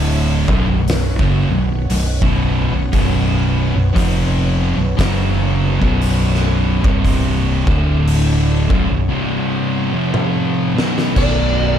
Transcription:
Already playing: D1 D2 A2 D3 A3 E4
0.48 B0 B1 F#2 B3 C#5 F#5, kick
0.67 B0 B1 F#2
0.88 snare, open hi-hat
1.19 F#1 F#2 C#3, kick
1.50 B0 B1 F#2
1.90 B0 B1 F#2, open hi-hat
2.22 B0 B1 F#2 B2, kick
2.72 B0 B1 F#2
2.92 B0 B1 F#2 B2, kick, open hi-hat
3.75 B0 B1 F#2
3.94 F1 F2 C3 F3, kick, open hi-hat
4.77 B0 B1 F#2
4.97 F#1 F#2 C#3 F#3, kick, snare, open hi-hat
5.80 B0 B1 F#2 B2, kick
6.02 open hi-hat
6.34 snare
6.83 C1 C2 G2 C3, kick
7.05 kick, open hi-hat
7.67 D1 D2 A2 D3 A3 E4, kick
8.08 open hi-hat
8.69 B0 B1 F#2 B3 C#5 F#5, kick
8.90 B0 B1 F#2
9.10 C2 G2 C3
9.94 F2 C3 F3
10.14 high tom
10.77 B1 F#2 B2, snare
10.98 snare
11.16 B0 B1 F#2 B2 F#3 B3 F#4 D5, kick, crash
11.20 D4

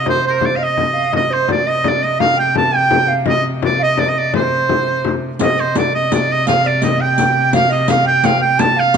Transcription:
Already playing: C3
0.06 C5, frame drum
0.24 C5, frame drum
0.30 A#4
0.36 C5
0.41 frame drum
0.45 D5
0.56 D#5 F5
0.63 D#5
0.78 frame drum
0.94 F5, frame drum
1.13 C3 D#5, frame drum
1.30 C5
1.49 D5, frame drum
1.66 D#5
1.84 D5, frame drum
1.88 D5
2.02 D#5, frame drum
2.20 F5, frame drum
2.36 G5
2.55 A5, frame drum
2.72 G5
2.76 G5
2.91 frame drum
3.08 F5, frame drum
3.26 D#5, frame drum
3.62 D5, frame drum
3.79 F5
3.83 D#5
3.98 D5, frame drum
4.07 D#5
4.16 D5, frame drum
4.32 C5 D5, frame drum
4.51 frame drum
4.69 frame drum
4.87 frame drum
5.04 frame drum
5.24 frame drum
5.39 C3 D#5, riq, frame drum
5.58 C5, riq
5.75 D5, riq, frame drum
5.95 D#5
6.12 D5, riq, frame drum
6.29 D#5, frame drum
6.46 F5, riq, frame drum
6.65 D5, riq
6.81 D#5, riq, frame drum
7.01 G5
7.18 riq, frame drum
7.37 frame drum
7.53 F5, riq, frame drum
7.70 D#5, riq
7.88 F5, riq, frame drum
8.05 G5
8.24 F5, riq, frame drum
8.40 G5, frame drum
8.59 A5, riq, frame drum
8.76 F5, frame drum
8.94 riq

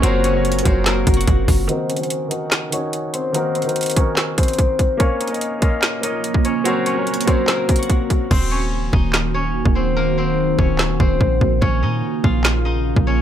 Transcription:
Already playing: C#3 A#3 D#4 F4 D#5 F5
0.02 F#1 F#3 C4 F#4 A#4 C5 C#5, closed hi-hat
0.24 C#4 C#5, closed hi-hat
0.33 F#3 F#4 A#4 C#5
0.45 closed hi-hat
0.52 closed hi-hat
0.59 closed hi-hat
0.63 F#1 F#3 C4 F#4 A#4 C5 C#5, kick, closed hi-hat
0.86 A#3 A#4, snare, clap, closed hi-hat
1.07 F#1, kick, closed hi-hat
1.14 F#4 F#5, closed hi-hat
1.21 closed hi-hat
1.27 F#1, kick, closed hi-hat
1.48 F#1, kick, open hi-hat
1.68 D#3 C4 D#4 F#4 A#4 C5, closed hi-hat
1.89 C#4 C#5, closed hi-hat
1.97 D#3 D#4 F#4, closed hi-hat
2.01 C5, closed hi-hat
2.10 closed hi-hat
2.28 D#3 D#4 F#4 A#4 D#5, closed hi-hat
2.51 snare, clap, closed hi-hat
2.70 D#3 C#4 D#4 F#4 C#5, closed hi-hat
2.93 closed hi-hat
3.13 C4 C5, closed hi-hat
3.33 D#3 A#3 D#4 F#4 A#4, closed hi-hat
3.55 C4 C5, closed hi-hat
3.62 D#3 D#4, closed hi-hat
3.66 F#4 A#4, closed hi-hat
3.76 closed hi-hat
3.81 closed hi-hat
3.83 closed hi-hat
3.86 closed hi-hat
3.90 closed hi-hat
3.91 closed hi-hat
3.95 D#3 C#4 D#4 F#4 A#4 C#5, kick, closed hi-hat
4.17 snare, clap, closed hi-hat
4.38 C4 C5, kick, closed hi-hat
4.43 closed hi-hat
4.48 closed hi-hat
4.53 closed hi-hat
4.59 kick, closed hi-hat
4.79 kick, closed hi-hat
4.97 C#3 A#3 C#4 F4 A#4 C#5 F5, kick, closed hi-hat
5.21 D#4 D#5, closed hi-hat
5.28 A#3 A#4 C#5, closed hi-hat
5.32 D#5, closed hi-hat
5.41 closed hi-hat
5.60 A#3 F4 A#4 C#5 D#5 F5, kick, closed hi-hat
5.82 snare, clap, closed hi-hat
6.01 A#3 D#4 A#4 C#5 D#5, closed hi-hat
6.24 closed hi-hat
6.34 kick
6.45 C#4 C#5, closed hi-hat
6.64 F#3 C4 F#4 A#4 C5 C#5, closed hi-hat
6.86 C#4 C#5, closed hi-hat
6.95 F#3 F#4 A#4 C#5
7.07 closed hi-hat
7.14 closed hi-hat
7.21 closed hi-hat
7.25 F#3 C4 F#4 A#4 C5 C#5, kick, closed hi-hat
7.48 A#3 A#4, snare, clap, closed hi-hat
7.69 kick, closed hi-hat
7.76 F#4 F#5, closed hi-hat
7.83 closed hi-hat
7.90 kick, closed hi-hat
8.10 kick, closed hi-hat
8.31 D#1 D#3 A#3 C4 F#4 C5, kick, crash
8.51 C#4 C#5
8.93 D#1 D#4 D#5, kick
9.13 snare, clap
9.34 C#4 C#5
9.65 D#1, kick
9.75 C4 C5
9.96 A#3 A#4
10.18 C4 C5
10.59 D#1 C#4 C#5, kick
10.79 snare, clap
11.00 D#1 C4 C5, kick
11.21 A#1, kick
11.41 A#1, kick
11.61 A#1 C#3 C#4 F4 C#5, kick
11.83 A#2 D#4 D#5
12.24 A#1 F4 F5, kick
12.44 snare, clap
12.65 D#4 D#5
12.96 A#1, kick
13.07 C#4 C#5

